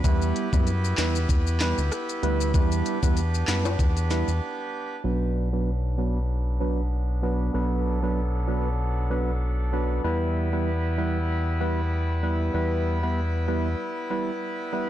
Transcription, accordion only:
0, 0, Header, 1, 2, 480
1, 0, Start_track
1, 0, Key_signature, 2, "minor"
1, 0, Tempo, 625000
1, 32, Time_signature, 4, 2, 24, 8
1, 11440, End_track
2, 0, Start_track
2, 0, Title_t, "Accordion"
2, 0, Program_c, 0, 21
2, 0, Note_on_c, 0, 71, 94
2, 33, Note_on_c, 0, 59, 79
2, 33, Note_on_c, 0, 64, 79
2, 33, Note_on_c, 0, 67, 86
2, 1934, Note_off_c, 0, 64, 0
2, 1953, Note_on_c, 0, 62, 77
2, 3842, Note_off_c, 0, 59, 0
2, 3842, Note_off_c, 0, 67, 0
2, 3842, Note_off_c, 0, 71, 0
2, 3854, Note_off_c, 0, 62, 0
2, 3872, Note_on_c, 0, 54, 80
2, 3872, Note_on_c, 0, 59, 72
2, 3872, Note_on_c, 0, 62, 69
2, 3873, Note_on_c, 0, 71, 84
2, 5774, Note_off_c, 0, 71, 0
2, 5793, Note_on_c, 0, 69, 86
2, 7682, Note_off_c, 0, 54, 0
2, 7682, Note_off_c, 0, 62, 0
2, 7694, Note_off_c, 0, 69, 0
2, 7713, Note_on_c, 0, 55, 81
2, 7713, Note_on_c, 0, 64, 73
2, 7713, Note_on_c, 0, 71, 90
2, 11440, Note_off_c, 0, 55, 0
2, 11440, Note_off_c, 0, 59, 0
2, 11440, Note_off_c, 0, 64, 0
2, 11440, Note_off_c, 0, 71, 0
2, 11440, End_track
0, 0, End_of_file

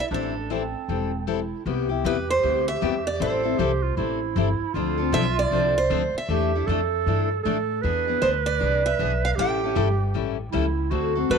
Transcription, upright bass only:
0, 0, Header, 1, 3, 480
1, 0, Start_track
1, 0, Key_signature, 0, "minor"
1, 0, Tempo, 385852
1, 147, Time_signature, 4, 2, 24, 8
1, 14160, End_track
2, 0, Start_track
2, 0, Title_t, "Upright bass"
2, 0, Program_c, 0, 32
2, 134, Note_on_c, 0, 33, 74
2, 907, Note_off_c, 0, 33, 0
2, 1100, Note_on_c, 0, 28, 65
2, 1870, Note_off_c, 0, 28, 0
2, 2060, Note_on_c, 0, 36, 74
2, 2528, Note_off_c, 0, 36, 0
2, 2542, Note_on_c, 0, 40, 84
2, 3009, Note_off_c, 0, 40, 0
2, 3029, Note_on_c, 0, 38, 70
2, 3493, Note_off_c, 0, 38, 0
2, 3509, Note_on_c, 0, 40, 83
2, 3972, Note_off_c, 0, 40, 0
2, 3984, Note_on_c, 0, 33, 79
2, 4449, Note_off_c, 0, 33, 0
2, 4465, Note_on_c, 0, 36, 87
2, 4930, Note_off_c, 0, 36, 0
2, 4941, Note_on_c, 0, 33, 79
2, 5408, Note_off_c, 0, 33, 0
2, 5420, Note_on_c, 0, 31, 89
2, 5701, Note_off_c, 0, 31, 0
2, 5898, Note_on_c, 0, 38, 78
2, 6366, Note_off_c, 0, 38, 0
2, 6376, Note_on_c, 0, 35, 97
2, 6845, Note_off_c, 0, 35, 0
2, 6854, Note_on_c, 0, 36, 80
2, 7324, Note_off_c, 0, 36, 0
2, 7340, Note_on_c, 0, 38, 87
2, 7621, Note_off_c, 0, 38, 0
2, 7821, Note_on_c, 0, 40, 82
2, 8287, Note_off_c, 0, 40, 0
2, 8304, Note_on_c, 0, 41, 93
2, 8769, Note_off_c, 0, 41, 0
2, 8787, Note_on_c, 0, 43, 75
2, 9251, Note_off_c, 0, 43, 0
2, 9270, Note_on_c, 0, 45, 80
2, 9732, Note_off_c, 0, 45, 0
2, 9748, Note_on_c, 0, 40, 77
2, 10211, Note_off_c, 0, 40, 0
2, 10228, Note_on_c, 0, 38, 84
2, 10691, Note_off_c, 0, 38, 0
2, 10706, Note_on_c, 0, 36, 78
2, 11170, Note_off_c, 0, 36, 0
2, 11187, Note_on_c, 0, 35, 81
2, 11650, Note_off_c, 0, 35, 0
2, 11666, Note_on_c, 0, 33, 79
2, 12130, Note_off_c, 0, 33, 0
2, 12139, Note_on_c, 0, 31, 91
2, 12607, Note_off_c, 0, 31, 0
2, 12622, Note_on_c, 0, 33, 78
2, 13088, Note_off_c, 0, 33, 0
2, 13109, Note_on_c, 0, 37, 86
2, 13569, Note_off_c, 0, 37, 0
2, 13576, Note_on_c, 0, 38, 80
2, 14045, Note_off_c, 0, 38, 0
2, 14054, Note_on_c, 0, 40, 89
2, 14160, Note_off_c, 0, 40, 0
2, 14160, End_track
3, 0, Start_track
3, 0, Title_t, "Muted upright bass strokes"
3, 5718, Note_on_c, 9, 29, 36
3, 5842, Note_off_c, 9, 29, 0
3, 7640, Note_on_c, 9, 29, 39
3, 7764, Note_off_c, 9, 29, 0
3, 14160, End_track
0, 0, End_of_file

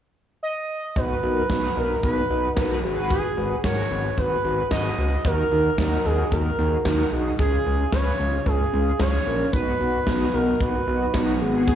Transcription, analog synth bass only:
0, 0, Header, 1, 2, 480
1, 0, Start_track
1, 0, Tempo, 535714
1, 862, Time_signature, 4, 2, 24, 8
1, 10529, End_track
2, 0, Start_track
2, 0, Title_t, "Analog synth bass"
2, 0, Program_c, 0, 38
2, 862, Note_on_c, 0, 35, 98
2, 1030, Note_off_c, 0, 35, 0
2, 1102, Note_on_c, 0, 35, 94
2, 1270, Note_off_c, 0, 35, 0
2, 1341, Note_on_c, 0, 35, 94
2, 1510, Note_off_c, 0, 35, 0
2, 1582, Note_on_c, 0, 35, 88
2, 1750, Note_off_c, 0, 35, 0
2, 1823, Note_on_c, 0, 35, 99
2, 1990, Note_off_c, 0, 35, 0
2, 2062, Note_on_c, 0, 35, 97
2, 2230, Note_off_c, 0, 35, 0
2, 2302, Note_on_c, 0, 35, 101
2, 2542, Note_on_c, 0, 32, 97
2, 2555, Note_off_c, 0, 35, 0
2, 2878, Note_off_c, 0, 32, 0
2, 3021, Note_on_c, 0, 32, 95
2, 3190, Note_off_c, 0, 32, 0
2, 3262, Note_on_c, 0, 32, 100
2, 3430, Note_off_c, 0, 32, 0
2, 3502, Note_on_c, 0, 32, 95
2, 3670, Note_off_c, 0, 32, 0
2, 3743, Note_on_c, 0, 32, 104
2, 3911, Note_off_c, 0, 32, 0
2, 3981, Note_on_c, 0, 32, 99
2, 4150, Note_off_c, 0, 32, 0
2, 4222, Note_on_c, 0, 32, 96
2, 4390, Note_off_c, 0, 32, 0
2, 4462, Note_on_c, 0, 37, 94
2, 4630, Note_off_c, 0, 37, 0
2, 4702, Note_on_c, 0, 39, 109
2, 4870, Note_off_c, 0, 39, 0
2, 4942, Note_on_c, 0, 39, 91
2, 5110, Note_off_c, 0, 39, 0
2, 5181, Note_on_c, 0, 39, 94
2, 5349, Note_off_c, 0, 39, 0
2, 5423, Note_on_c, 0, 39, 97
2, 5590, Note_off_c, 0, 39, 0
2, 5662, Note_on_c, 0, 39, 100
2, 5830, Note_off_c, 0, 39, 0
2, 5902, Note_on_c, 0, 39, 104
2, 6070, Note_off_c, 0, 39, 0
2, 6142, Note_on_c, 0, 39, 103
2, 6310, Note_off_c, 0, 39, 0
2, 6382, Note_on_c, 0, 35, 86
2, 6550, Note_off_c, 0, 35, 0
2, 6622, Note_on_c, 0, 37, 108
2, 6790, Note_off_c, 0, 37, 0
2, 6862, Note_on_c, 0, 37, 94
2, 7030, Note_off_c, 0, 37, 0
2, 7101, Note_on_c, 0, 37, 95
2, 7269, Note_off_c, 0, 37, 0
2, 7343, Note_on_c, 0, 37, 96
2, 7511, Note_off_c, 0, 37, 0
2, 7582, Note_on_c, 0, 37, 96
2, 7750, Note_off_c, 0, 37, 0
2, 7823, Note_on_c, 0, 37, 98
2, 7991, Note_off_c, 0, 37, 0
2, 8062, Note_on_c, 0, 37, 97
2, 8230, Note_off_c, 0, 37, 0
2, 8302, Note_on_c, 0, 34, 99
2, 8470, Note_off_c, 0, 34, 0
2, 8542, Note_on_c, 0, 35, 100
2, 8710, Note_off_c, 0, 35, 0
2, 8782, Note_on_c, 0, 35, 94
2, 8950, Note_off_c, 0, 35, 0
2, 9021, Note_on_c, 0, 35, 95
2, 9190, Note_off_c, 0, 35, 0
2, 9262, Note_on_c, 0, 35, 88
2, 9430, Note_off_c, 0, 35, 0
2, 9502, Note_on_c, 0, 35, 101
2, 9670, Note_off_c, 0, 35, 0
2, 9742, Note_on_c, 0, 35, 96
2, 9910, Note_off_c, 0, 35, 0
2, 9982, Note_on_c, 0, 35, 103
2, 10222, Note_on_c, 0, 32, 97
2, 10235, Note_off_c, 0, 35, 0
2, 10529, Note_off_c, 0, 32, 0
2, 10529, End_track
0, 0, End_of_file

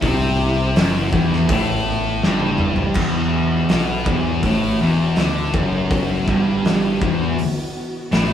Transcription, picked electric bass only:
0, 0, Header, 1, 2, 480
1, 0, Start_track
1, 0, Key_signature, 1, "minor"
1, 0, Tempo, 735294
1, 19, Time_signature, 4, 2, 24, 8
1, 5439, End_track
2, 0, Start_track
2, 0, Title_t, "Picked electric bass"
2, 0, Program_c, 0, 34
2, 18, Note_on_c, 0, 36, 104
2, 472, Note_off_c, 0, 36, 0
2, 497, Note_on_c, 0, 30, 111
2, 720, Note_off_c, 0, 30, 0
2, 735, Note_on_c, 0, 28, 101
2, 959, Note_off_c, 0, 28, 0
2, 975, Note_on_c, 0, 33, 103
2, 1429, Note_off_c, 0, 33, 0
2, 1458, Note_on_c, 0, 31, 78
2, 1911, Note_off_c, 0, 31, 0
2, 1931, Note_on_c, 0, 28, 102
2, 2387, Note_off_c, 0, 28, 0
2, 2423, Note_on_c, 0, 35, 102
2, 2643, Note_off_c, 0, 35, 0
2, 2652, Note_on_c, 0, 28, 98
2, 2877, Note_off_c, 0, 28, 0
2, 2892, Note_on_c, 0, 33, 102
2, 3118, Note_off_c, 0, 33, 0
2, 3139, Note_on_c, 0, 28, 90
2, 3361, Note_off_c, 0, 28, 0
2, 3375, Note_on_c, 0, 38, 78
2, 3599, Note_off_c, 0, 38, 0
2, 3614, Note_on_c, 0, 30, 104
2, 4070, Note_off_c, 0, 30, 0
2, 4098, Note_on_c, 0, 31, 92
2, 4552, Note_off_c, 0, 31, 0
2, 4582, Note_on_c, 0, 28, 91
2, 4804, Note_off_c, 0, 28, 0
2, 5305, Note_on_c, 0, 33, 94
2, 5439, Note_off_c, 0, 33, 0
2, 5439, End_track
0, 0, End_of_file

